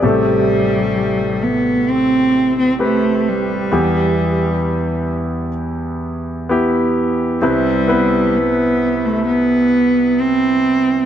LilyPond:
<<
  \new Staff \with { instrumentName = "Grand piano" } { \time 4/4 \key c \major \tempo 4 = 65 << { <gis' d''>16 r2. r8. | r1 | r1 | } \\ { <c g' a'>2 r4 <c' g' b'>4 | <b e' g'>2 r4 <b e' g'>4 | <c' e' b'>8 <b e' b'>2 r4. | } >> }
  \new Staff \with { instrumentName = "Grand piano" } { \clef bass \time 4/4 \key c \major <a,, a,>1 | <e, e>1 | <c, c>1 | }
  \new Staff \with { instrumentName = "Cello" } { \time 4/4 \key c \major g4. b8 c'8. c'16 a8 g8~ | g4. r2 r8 | g4 b8. a16 b4 c'4 | }
>>